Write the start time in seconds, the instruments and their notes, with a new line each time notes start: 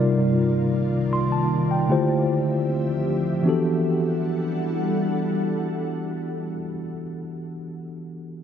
Already playing: ambient pad C2 D#3 A#3 F4 D5, tine electric piano C3 G3 D#4 F4 A#4 D5
1.13 tine electric piano C6
1.32 tine electric piano A5
1.71 tine electric piano G5
1.89 ambient pad D2 F3 C4 G4 E5, tine electric piano D3 A3 E4 F4 G4 C5
3.43 tine electric piano E3 B3 D4 F#4, ambient pad G3 D4 E4 A4 F#5
3.48 tine electric piano G4 A4